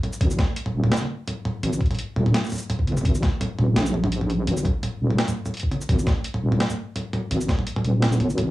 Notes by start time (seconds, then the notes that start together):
0.03 closed hi-hat, mid tom
0.13 shaker
0.21 G#1, kick, closed hi-hat, mid tom
0.30 shaker
0.39 kick, snare, closed hi-hat, mid tom
0.56 closed hi-hat
0.66 mid tom
0.74 D#1
0.84 mid tom
0.92 snare, closed hi-hat
0.97 shaker
1.02 mid tom
1.28 closed hi-hat, mid tom
1.45 mid tom
1.63 G#1, closed hi-hat, mid tom
1.73 shaker
1.81 kick, closed hi-hat
1.86 closed hi-hat
1.91 closed hi-hat, mid tom
1.95 closed hi-hat
1.99 closed hi-hat
2.16 D#1, mid tom
2.26 mid tom
2.34 snare, closed hi-hat
2.44 shaker
2.46 shaker
2.49 mid tom, shaker
2.52 shaker
2.55 shaker
2.58 shaker
2.62 shaker
2.70 closed hi-hat, mid tom
2.79 kick
2.87 F#1, closed hi-hat, mid tom
2.92 mid tom
2.97 mid tom, shaker
3.01 G#1, kick, mid tom
3.05 closed hi-hat
3.15 shaker
3.23 kick, snare, closed hi-hat, mid tom
3.41 closed hi-hat, mid tom
3.58 D#1, mid tom
3.76 A#1, snare, closed hi-hat
3.86 shaker
3.94 mid tom
4.04 mid tom
4.12 closed hi-hat
4.21 mid tom
4.30 closed hi-hat
4.47 G#1, closed hi-hat, mid tom
4.57 shaker
4.65 kick, closed hi-hat, mid tom
4.83 closed hi-hat, mid tom
5.01 D#1
5.10 mid tom
5.18 snare, closed hi-hat
5.28 mid tom, shaker
5.46 mid tom, shaker
5.54 closed hi-hat
5.57 closed hi-hat
5.60 kick, closed hi-hat
5.72 closed hi-hat, mid tom
5.81 shaker
5.89 G#1, kick, closed hi-hat, mid tom
5.99 shaker
6.07 kick, snare, closed hi-hat, mid tom
6.24 closed hi-hat
6.34 mid tom
6.42 D#1
6.52 mid tom
6.60 snare, closed hi-hat
6.70 mid tom, shaker
6.96 closed hi-hat, mid tom
7.13 closed hi-hat, mid tom
7.31 G#1, closed hi-hat, mid tom
7.41 shaker
7.49 kick, snare, closed hi-hat
7.59 mid tom
7.67 closed hi-hat
7.76 mid tom
7.84 D#1, closed hi-hat
8.02 snare, closed hi-hat
8.12 shaker
8.20 G#1, closed hi-hat, mid tom
8.30 shaker
8.38 closed hi-hat, mid tom